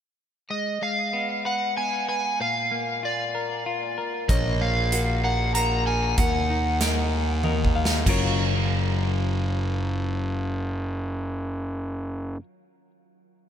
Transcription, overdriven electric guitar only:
0.51 0.83 D#5 soft
0.83 1.42 F5 medium
1.46 1.75 F#5 soft
1.77 2.08 G#5 medium
2.09 2.41 G#5 medium
2.41 3.06 F5 medium
3.05 3.63 D5 soft
4.30 4.62 D#5 medium
4.61 5.20 F5 medium
5.24 5.54 F#5 medium
5.55 5.86 A#5 medium
5.87 6.18 G#5 medium
6.19 7.40 F#5 medium

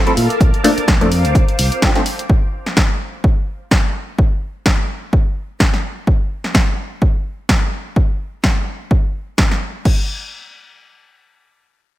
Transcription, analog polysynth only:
0.06 0.12 F3 medium
0.06 0.12 A3 medium
0.06 0.12 C4 medium
0.06 0.12 E4 medium
0.06 0.12 A4 medium
0.64 0.71 F3 medium
0.64 0.71 A3 medium
0.64 0.71 A#3 medium
0.64 0.71 D4 medium
0.64 0.71 A4 medium
1.01 1.06 F3 medium
1.01 1.06 A3 medium
1.01 1.07 A#3 medium
1.01 1.07 D4 medium
1.01 1.07 A4 medium
1.82 1.89 F3 medium
1.82 1.89 A3 medium
1.82 1.89 C4 medium
1.82 1.89 D4 medium
1.82 1.90 A4 loud
1.95 2.01 F3 medium
1.95 2.01 A3 medium
1.95 2.01 C4 medium
1.95 2.01 D4 medium
1.95 2.01 A4 medium

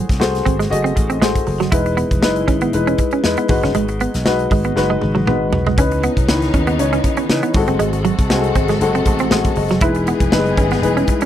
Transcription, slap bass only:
0.09 0.18 C2 medium
0.21 0.40 C2 medium
0.47 0.66 G#1 medium
0.72 0.91 F#1 medium
0.97 1.16 A1 medium
1.22 1.41 A1 medium
1.47 1.67 F#1 medium
1.72 2.02 E1 loud
2.11 2.23 E1 medium
2.23 2.43 F#1 medium
2.48 2.68 G#1 medium
2.74 2.93 E1 medium
3.25 3.35 E2 medium
3.49 3.60 G#1 loud
3.64 3.76 F#1 medium
3.76 4.05 G#1 loud
4.15 4.23 B1 medium
4.26 4.45 B1 medium
4.51 4.70 G#1 medium
4.77 4.96 F#1 medium
5.03 5.22 G#1 medium
5.27 5.53 G#1 medium
5.53 5.78 B1 medium
5.78 6.07 C#2 medium
6.17 6.26 B1 medium
6.29 6.48 C#2 medium
6.54 6.79 D#2 medium
6.79 6.98 C#2 loud
7.29 7.40 C#3 loud
7.54 7.65 G#1 loud
7.68 7.77 F#1 medium
7.80 8.10 G#1 medium
8.19 8.28 C2 medium
8.31 8.50 C2 medium
8.56 8.75 G#1 medium
8.81 9.00 F#1 medium
9.06 9.25 A1 medium
9.31 9.51 A1 medium
9.57 9.76 F#1 medium
9.81 10.12 E1 loud
10.21 10.30 E1 medium
10.32 10.52 F#1 medium
10.58 10.77 G#1 medium
10.82 11.02 E1 medium

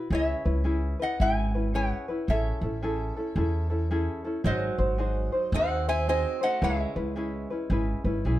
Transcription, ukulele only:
0.00 0.11 E4 soft
0.00 0.12 F#4 medium
0.00 0.11 B4 medium
0.11 0.45 C#4 medium
0.11 0.44 E4 medium
0.11 0.45 G#4 medium
0.11 0.44 B4 medium
0.45 0.63 C#4 soft
0.45 0.64 E4 soft
0.45 0.65 B4 medium
0.64 0.99 C#4 medium
0.64 0.99 E4 medium
0.64 0.99 G#4 medium
0.64 0.98 B4 medium
0.99 1.19 C#4 soft
0.99 1.20 E4 soft
0.99 1.19 B4 medium
1.20 1.54 C#4 medium
1.20 1.54 E4 medium
1.20 1.54 G#4 medium
1.20 1.53 B4 medium
1.55 1.73 C#4 soft
1.55 1.74 E4 soft
1.55 1.74 B4 medium
1.74 2.08 C#4 medium
1.74 2.08 E4 medium
1.74 2.08 G#4 medium
1.74 2.07 B4 medium
2.08 2.29 C#4 soft
2.08 2.29 E4 medium
2.08 2.28 B4 medium
2.29 2.63 C#4 medium
2.29 2.63 E4 medium
2.29 2.62 G#4 medium
2.29 2.61 A4 medium
2.63 2.81 C#4 soft
2.63 2.82 E4 soft
2.63 2.82 A4 medium
2.83 3.16 C#4 medium
2.83 3.16 E4 medium
2.83 3.16 G#4 medium
2.83 3.15 A4 medium
3.17 3.36 C#4 soft
3.17 3.36 E4 medium
3.17 3.36 A4 medium
3.36 3.70 C#4 medium
3.36 3.69 E4 medium
3.36 3.70 G#4 medium
3.36 3.69 A4 medium
3.70 3.90 C#4 medium
3.70 3.90 E4 medium
3.70 3.90 A4 medium
3.91 4.25 C#4 medium
3.91 4.24 E4 medium
3.91 4.24 G#4 medium
3.91 4.23 A4 medium
4.24 4.44 C#4 medium
4.24 4.45 E4 medium
4.24 4.45 A4 medium
4.44 4.78 D#4 medium
4.44 4.78 F#4 medium
4.44 4.78 G#4 medium
4.44 4.77 C5 medium
4.79 4.98 D#4 soft
4.79 4.98 F#4 soft
4.79 4.98 C5 medium
4.98 5.33 D#4 medium
4.98 5.33 F#4 medium
4.98 5.32 G#4 medium
4.98 5.31 C5 medium
5.32 5.53 D#4 soft
5.32 5.53 F#4 soft
5.32 5.53 C5 medium
5.53 5.88 D#4 medium
5.53 5.88 F#4 medium
5.53 5.87 G#4 medium
5.53 5.86 C5 medium
5.88 6.07 D#4 soft
5.88 6.07 F#4 soft
5.88 6.08 C5 medium
6.07 6.42 D#4 medium
6.07 6.41 F#4 medium
6.07 6.41 G#4 medium
6.07 6.40 C5 medium
6.41 6.61 D#4 soft
6.41 6.62 F#4 medium
6.41 6.61 C5 medium
6.61 6.96 C#4 medium
6.61 6.96 E4 medium
6.61 6.96 G#4 medium
6.61 6.95 B4 medium
6.96 7.15 C#4 soft
6.96 7.16 E4 soft
6.96 7.16 B4 medium
7.16 7.50 C#4 medium
7.16 7.50 E4 medium
7.16 7.50 G#4 medium
7.16 7.49 B4 medium
7.50 7.70 C#4 soft
7.50 7.70 E4 soft
7.50 7.70 B4 medium
7.70 8.05 C#4 medium
7.70 8.05 E4 medium
7.70 8.04 G#4 medium
7.70 8.04 B4 medium
8.05 8.25 C#4 soft
8.05 8.25 E4 medium
8.05 8.25 B4 medium
8.26 8.39 C#4 medium
8.26 8.39 E4 medium
8.26 8.39 G#4 medium
8.26 8.39 B4 medium

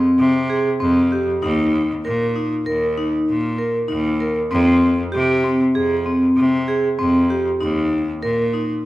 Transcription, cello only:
0.19 0.67 C3 medium
0.81 1.29 F2 medium
1.42 1.90 D#2 loud
2.05 2.53 A#2 medium
2.66 3.14 D#2 medium
3.28 3.76 A#2 medium
3.89 4.38 D#2 medium
4.52 5.00 F2 loud
5.14 5.62 C3 loud
5.75 6.24 F2 medium
6.37 6.85 C3 medium
6.99 7.48 F2 medium
7.62 8.10 D#2 medium
8.23 8.72 A#2 medium

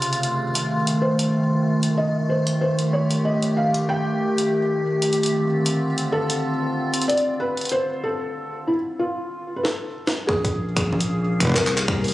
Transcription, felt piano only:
1.02 1.94 C5 medium
1.97 2.31 D#5 medium
2.29 2.60 C5 medium
2.61 2.95 C5 medium
2.93 3.27 C#5 medium
3.25 3.59 D#5 loud
3.57 3.87 F5 medium
3.89 4.81 G5 loud
6.12 7.05 A4 loud
7.08 7.42 D5 loud
7.40 7.73 B4 loud
7.72 8.05 C5 loud
8.04 8.70 A4 loud
8.67 8.75 E4 medium
8.99 9.92 F4 medium
9.56 9.64 B4 medium
9.63 10.30 A4 medium
10.27 11.59 G#4 medium
11.55 12.14 A#4 loud

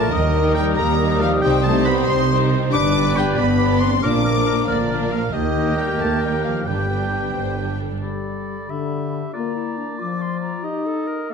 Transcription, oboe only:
0.00 0.11 A5 medium
0.12 0.54 D#5 medium
0.54 0.76 G5 medium
0.76 1.22 A#5 medium
1.21 1.41 F5 medium
1.42 1.52 G5 medium
1.63 1.84 A5 medium
1.85 1.95 B5 medium
2.08 2.18 C6 medium
2.73 3.18 D6 medium
3.17 3.38 G5 medium
3.39 3.80 B5 medium
3.80 3.90 C6 medium
4.03 4.67 D6 medium
4.69 5.14 D5 medium
5.13 5.35 F5 medium
5.33 5.78 D#5 medium
5.78 5.88 G5 medium
6.01 6.22 A5 medium
6.22 6.44 G5 medium
6.43 6.68 F5 soft
6.67 7.79 G5 soft
8.02 8.71 D5 soft
8.70 9.33 E5 soft
9.34 10.65 D5 soft
10.64 11.32 D#5 soft
11.31 11.34 F5 soft

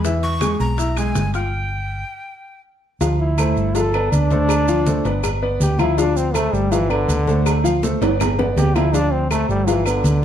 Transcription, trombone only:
3.20 3.77 E4 medium
3.75 4.11 A4 medium
4.12 5.20 D4 loud
5.61 5.81 G4 medium
5.79 5.99 E4 medium
5.98 6.18 D4 medium
6.17 6.36 C4 medium
6.35 6.55 A3 loud
6.54 6.73 G3 medium
6.71 6.91 E3 loud
6.90 7.62 D3 loud
8.57 8.77 G4 medium
8.75 8.95 E4 medium
8.93 9.14 D4 loud
9.12 9.30 C4 medium
9.31 9.48 A3 loud
9.49 9.69 G3 medium
9.68 9.87 E3 medium
9.86 10.25 D3 medium

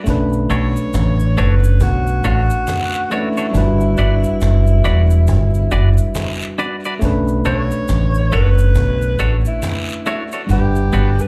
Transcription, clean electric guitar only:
0.50 0.66 A3 medium
0.50 0.67 D4 medium
0.50 0.67 F#4 medium
0.50 0.67 C#5 medium
1.37 1.54 A3 medium
1.37 1.54 D4 medium
1.37 1.54 F#4 medium
1.37 1.54 C#5 loud
2.24 2.41 A3 medium
2.24 2.41 D4 medium
2.24 2.41 F#4 loud
2.24 2.41 C#5 medium
3.11 3.28 A3 medium
3.11 3.28 D4 medium
3.11 3.28 F#4 medium
3.11 3.28 C#5 loud
3.37 3.46 A3 medium
3.37 3.46 D4 medium
3.37 3.46 F#4 medium
3.37 3.46 C#5 medium
3.98 4.14 D4 medium
3.98 4.15 F#4 medium
3.98 4.15 B4 medium
3.98 4.15 D5 medium
4.84 5.01 D4 medium
4.84 5.01 F#4 medium
4.84 5.01 B4 loud
4.84 5.01 D5 loud
5.72 5.88 D4 medium
5.72 5.88 F#4 loud
5.72 5.88 B4 medium
5.72 5.89 D5 loud
6.58 6.75 D4 medium
6.58 6.75 F#4 medium
6.58 6.75 B4 loud
6.58 6.75 D5 loud
6.85 6.94 D4 medium
6.85 6.94 F#4 medium
6.85 6.94 B4 medium
6.85 6.93 D5 medium
7.45 7.62 A3 medium
7.45 7.62 D4 loud
7.45 7.62 F#4 medium
7.45 7.62 C#5 medium
8.32 8.49 A3 loud
8.32 8.49 D4 medium
8.32 8.49 F#4 medium
8.32 8.49 C#5 loud
9.19 9.36 A3 medium
9.19 9.36 D4 medium
9.19 9.36 F#4 loud
9.19 9.36 C#5 medium
10.06 10.23 A3 medium
10.06 10.23 D4 medium
10.06 10.23 F#4 loud
10.06 10.23 C#5 loud
10.33 10.42 A3 medium
10.33 10.41 D4 medium
10.33 10.41 F#4 medium
10.33 10.41 C#5 medium
10.93 11.09 B3 medium
10.93 11.10 D4 medium
10.93 11.10 F#4 medium
10.93 11.10 B4 medium

